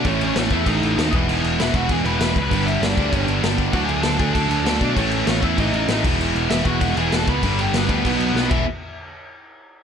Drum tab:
CC |xxxxxxxx|xxxxxxxx|xxxxxxxx|xxxxxxxx|
SD |--o---o-|--o---o-|--o---o-|--o---o-|
BD |o--oo--o|---oo--o|o--oo--o|o--oo--o|

CC |xxxxxxxx|xxxxxxxx|xxxxxx-x|--------|
SD |--o---o-|--o---o-|--o---o-|--------|
BD |o--oo--o|---oo--o|o--oo--o|--------|